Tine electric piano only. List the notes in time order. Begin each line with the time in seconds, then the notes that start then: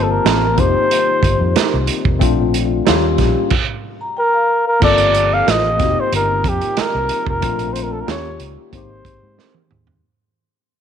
Already playing: A#3 C4 F4 A5
0.54 A#3 C4
0.59 D#4 G4
2.19 A3 C4 D4 F4
2.86 F3 A#3 C#4 F4
2.92 G3
4.80 A#3 C4 F4 A4
5.76 A#3 C4
5.81 D#4 F#4
5.90 G4
7.41 A3 C4 D4 F4
8.06 A#3 C#4 F4 G4
8.70 A#3 C4
8.75 D#4 G4